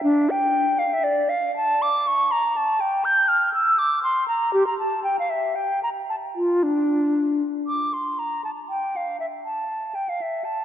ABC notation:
X:1
M:3/4
L:1/16
Q:1/4=119
K:Dm
V:1 name="Flute"
D2 g4 f e d2 f2 | a2 d'2 ^c'2 b2 a2 g2 | g'2 f'2 e'2 d'2 c'2 b2 | G b a2 g f e2 g2 b2 |
a2 F2 D6 z2 | d'2 c'2 b2 a2 g2 f2 | e2 a4 g f e2 a2 |]